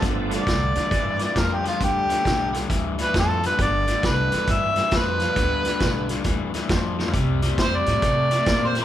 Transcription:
Already playing: G2 F3 A3 B3 D4
0.02 G1 G2 D3, kick, snare, closed hi-hat
0.30 G2 D3, snare, closed hi-hat
0.37 D5
0.47 C2 G2 D3, kick, snare, closed hi-hat
0.75 E2 G2 D3, snare, closed hi-hat
0.91 G2 E3, kick, snare, closed hi-hat
1.19 G2 E3, snare, closed hi-hat
1.24 D5
1.36 F2 G2 F3 A#4, kick, snare, closed hi-hat
1.53 G4
1.64 G2 F3 F4, snare, closed hi-hat
1.80 D2 G2 D3, kick, snare, closed hi-hat
1.84 G4
2.09 G2 D3, snare, closed hi-hat
2.24 B1 G2 D3, kick, snare, closed hi-hat
2.53 G2 D3, snare, closed hi-hat
2.69 D2 G2 E3, kick, snare, closed hi-hat
2.98 G2 E3, snare, closed hi-hat
3.02 B4
3.14 F2 G2 F3, kick, snare, closed hi-hat
3.19 A4
3.43 G2 F3 B4, snare, closed hi-hat
3.59 G1 G2 D3 D5, kick, snare, closed hi-hat
3.87 G2 D3, snare, closed hi-hat
4.03 C2 G2 D3 B4, kick, snare, closed hi-hat
4.32 E2 G2 D3, snare, closed hi-hat
4.47 G2 E3, kick, snare, closed hi-hat
4.52 E5
4.76 G2 E3, snare, closed hi-hat
4.91 F2 G2 F3, kick, snare, closed hi-hat
4.96 B4
5.20 G2 F3, snare, closed hi-hat
5.36 D2 G2 D3, kick, snare, closed hi-hat
5.65 G2 D3, snare, closed hi-hat
5.80 B1 G2 D3, kick, snare, closed hi-hat
6.09 G2 D3, snare, closed hi-hat
6.24 D2 G2 E3, kick, snare, closed hi-hat
6.54 G2 E3, snare, closed hi-hat
6.69 F2 G2 F3, kick, snare, closed hi-hat
6.99 G2 F3, snare
7.08 floor tom
7.13 C2 C3 G3, kick, snare, closed hi-hat
7.42 C3 G3, snare, closed hi-hat
7.58 F2 C3 G3 C5, kick, snare, closed hi-hat
7.77 D5
7.86 A2 C3 G3, snare, closed hi-hat
8.02 C3 A3, kick, snare, closed hi-hat
8.31 C3 A3, snare, closed hi-hat
8.46 A#2 C3 A#3, kick, snare, closed hi-hat
8.67 C5
8.75 C3 A#3, snare, closed hi-hat

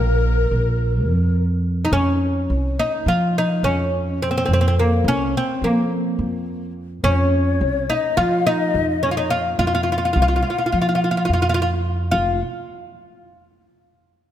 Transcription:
Already playing: A#1 A#3 A#4
0.51 A#1
1.07 F2
1.85 D#4
1.92 F2 C#4
2.50 C2
2.79 D#4
3.06 F3 F4
3.38 D#4
3.63 F2 C#4
4.22 C4
4.31 C4
4.38 C4
4.46 F2 C4
4.53 C4
4.61 C4
4.68 C4
4.79 A#3
5.04 C2 C#4
5.37 C4
5.62 F3 A#3
6.19 F2
7.04 F2 C#4 C#5
7.61 C2
7.90 D#4 F5
7.94 D#5
8.17 F3 F4 F5
8.47 D#4 D#5
8.74 F2
8.90 D#5
9.03 C#4 C#5
9.11 F4
9.17 D#4 D#5
9.30 F4 F5
9.59 F2 F4 F5
9.67 F4
9.75 F4
9.83 F4
9.92 F4
9.98 F4
10.05 F4
10.13 C2 F4
10.22 F4
10.28 F4
10.36 F4
10.43 F4
10.50 F4
10.58 F4
10.66 F4
10.72 F3 F4
10.82 F4
10.89 F4
10.95 F4
11.04 F4
11.11 F4
11.17 F4
11.25 F4
11.29 F2
11.33 F4
11.42 F4
11.49 F4
11.54 F4
11.62 F4
12.11 F1 F4 F5

